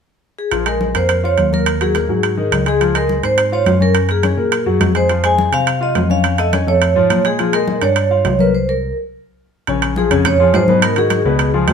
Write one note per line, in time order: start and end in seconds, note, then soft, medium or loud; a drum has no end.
0.39 0.68 G#4 medium
0.51 0.92 A#1 medium
0.51 0.64 F3 medium
0.51 0.64 F4 medium
0.51 high conga soft
0.51 high timbale medium
0.66 0.90 G#3 medium
0.66 0.90 G#4 medium
0.66 0.94 A#4 medium
0.66 high conga soft
0.66 high timbale medium
0.81 high conga medium
0.95 1.35 F2 medium
0.95 1.18 A#3 medium
0.95 1.19 A#4 medium
0.95 1.25 C5 medium
0.95 high timbale medium
1.09 high conga soft
1.09 high timbale medium
1.23 1.47 F4 medium
1.23 1.51 C#5 medium
1.23 1.47 F5 medium
1.23 high conga soft
1.38 2.04 D#2 medium
1.38 high conga medium
1.38 high timbale medium
1.52 1.75 A#3 medium
1.52 1.76 A#4 medium
1.52 1.82 A#4 medium
1.52 high conga medium
1.66 high timbale medium
1.81 1.93 F#3 medium
1.81 1.93 F#4 medium
1.81 2.67 G#4 medium
1.81 high timbale medium
1.95 2.07 A#3 medium
1.95 2.07 A#4 medium
1.95 high conga medium
1.95 high timbale medium
2.09 2.49 G#2 medium
2.09 2.33 F#3 medium
2.09 2.33 F#4 medium
2.09 high conga soft
2.23 high conga soft
2.23 high timbale medium
2.37 2.61 D#3 medium
2.37 2.61 D#4 medium
2.37 high conga soft
2.52 3.18 C#2 medium
2.52 high conga medium
2.52 high timbale medium
2.66 2.78 G#3 medium
2.66 2.78 G#4 medium
2.66 2.97 G#4 medium
2.66 high conga soft
2.66 high timbale medium
2.80 2.92 F3 medium
2.80 2.93 F4 medium
2.80 high conga soft
2.80 high timbale medium
2.94 3.18 G#3 medium
2.94 3.18 G#4 medium
2.94 3.22 A#4 medium
2.94 high conga soft
2.94 high timbale medium
3.09 high conga medium
3.23 3.63 G#2 medium
3.23 3.47 C4 medium
3.23 3.47 C5 medium
3.23 3.54 C5 medium
3.23 high timbale medium
3.38 high conga soft
3.38 high timbale medium
3.52 3.76 F4 medium
3.52 3.79 C#5 medium
3.52 3.76 F5 medium
3.52 high conga soft
3.66 4.32 F#2 medium
3.66 high conga medium
3.66 high timbale medium
3.66 low timbale medium
3.80 4.04 C#4 medium
3.80 4.08 A#4 loud
3.80 4.04 C#5 medium
3.80 high conga medium
3.95 high conga soft
3.95 high timbale medium
4.09 4.21 A#3 medium
4.09 4.92 G#4 medium
4.09 4.21 A#4 medium
4.09 high conga soft
4.09 high timbale medium
4.23 4.35 C#4 medium
4.23 4.35 C#5 medium
4.23 high conga medium
4.23 high timbale medium
4.37 4.65 A#2 medium
4.37 4.61 A#3 medium
4.37 4.61 A#4 medium
4.37 high conga soft
4.52 high conga soft
4.52 high timbale medium
4.66 4.80 F#2 medium
4.66 4.90 F#3 medium
4.66 4.90 F#4 medium
4.66 high conga soft
4.80 5.47 F2 medium
4.80 high conga medium
4.80 high timbale medium
4.80 low timbale medium
4.95 5.07 G#3 medium
4.95 5.07 G#4 medium
4.95 5.25 C5 medium
4.95 high timbale medium
5.09 5.21 F3 medium
5.09 5.21 F4 medium
5.09 high timbale medium
5.23 5.47 G#3 medium
5.23 5.47 G#4 medium
5.23 5.54 G#5 medium
5.23 high conga soft
5.23 high timbale medium
5.38 high conga loud
5.52 5.93 C3 medium
5.52 5.76 C4 medium
5.52 5.76 C5 medium
5.52 5.83 F5 loud
5.52 high timbale medium
5.67 high conga soft
5.67 high timbale medium
5.81 6.04 F4 medium
5.81 6.09 D#5 medium
5.81 6.05 F5 medium
5.81 high conga soft
5.95 6.62 F2 medium
5.95 high conga medium
5.95 high timbale medium
5.95 low timbale medium
6.10 6.33 C#4 medium
6.10 6.34 C#5 medium
6.10 6.40 F5 medium
6.10 high conga medium
6.24 high conga soft
6.24 high timbale medium
6.38 6.50 A3 medium
6.38 6.51 A4 medium
6.38 6.66 D#5 medium
6.38 high conga soft
6.38 high timbale medium
6.53 6.65 C#4 medium
6.53 6.65 C#5 medium
6.53 high conga medium
6.53 high timbale medium
6.67 6.94 F2 medium
6.67 6.91 A3 medium
6.67 6.91 A4 medium
6.67 7.21 C#5 medium
6.67 high conga soft
6.82 high conga soft
6.82 high timbale medium
6.96 7.09 G#2 medium
6.96 7.19 F3 medium
6.96 7.20 F4 medium
6.96 high conga soft
7.10 7.76 A#2 medium
7.10 high conga medium
7.10 high timbale medium
7.25 7.37 G#3 medium
7.25 7.37 G#4 medium
7.25 7.55 G#4 medium
7.25 high conga soft
7.25 high timbale medium
7.39 7.51 F3 medium
7.39 7.51 F4 medium
7.39 high conga soft
7.39 high timbale medium
7.53 7.77 G#3 medium
7.53 7.77 G#4 medium
7.53 7.83 A#4 medium
7.53 high conga soft
7.53 high timbale medium
7.68 high conga medium
7.81 8.22 G2 medium
7.81 8.06 D4 medium
7.81 8.41 C#5 medium
7.81 8.06 D5 medium
7.81 high timbale medium
7.96 high conga soft
7.96 high timbale medium
8.11 8.34 F4 medium
8.11 8.34 F5 medium
8.11 high conga soft
8.25 8.91 C2 medium
8.25 high conga medium
8.25 high timbale medium
8.25 low timbale medium
8.39 8.51 A#3 medium
8.39 8.51 A#4 medium
8.39 8.55 B4 medium
8.39 high conga medium
8.54 8.69 C5 medium
8.69 8.95 A#4 medium
9.67 10.08 A#1 medium
9.67 9.91 C#3 medium
9.67 9.92 C#4 medium
9.67 9.92 C#5 medium
9.67 high conga soft
9.67 high timbale medium
9.82 high conga soft
9.82 high timbale medium
9.96 10.09 F3 medium
9.96 10.09 F4 medium
9.96 10.27 G#4 medium
9.96 10.09 G#4 medium
9.96 high conga medium
10.11 10.51 F2 medium
10.11 10.34 C#3 medium
10.11 10.34 C#4 medium
10.11 10.35 C#5 medium
10.11 high timbale medium
10.25 10.55 C#5 loud
10.25 high conga soft
10.25 low conga medium
10.25 high timbale medium
10.40 10.63 F3 medium
10.40 10.63 F4 medium
10.40 10.63 G#4 medium
10.40 high conga soft
10.54 11.20 G#2 medium
10.54 10.84 C5 medium
10.54 high conga medium
10.54 high timbale medium
10.54 low timbale medium
10.68 10.92 B2 medium
10.68 10.92 B3 medium
10.68 10.92 B4 medium
10.68 high conga medium
10.82 10.90 A#4 medium
10.82 high conga soft
10.82 high timbale loud
10.96 11.20 D#3 medium
10.96 11.20 D#4 medium
10.96 11.21 F#4 medium
10.96 11.51 G#4 medium
10.96 high conga soft
10.96 high timbale medium
11.10 high conga medium
11.10 high timbale medium
11.25 11.65 C#2 medium
11.25 11.49 B2 medium
11.25 11.49 B3 medium
11.25 11.49 B4 medium
11.25 high conga soft
11.39 high conga soft
11.39 high timbale medium
11.54 11.73 F3 medium
11.54 11.73 F4 medium
11.54 11.73 G#4 medium
11.54 high conga soft
11.68 11.73 D#2 medium
11.68 high conga medium
11.68 high timbale medium
11.68 low timbale medium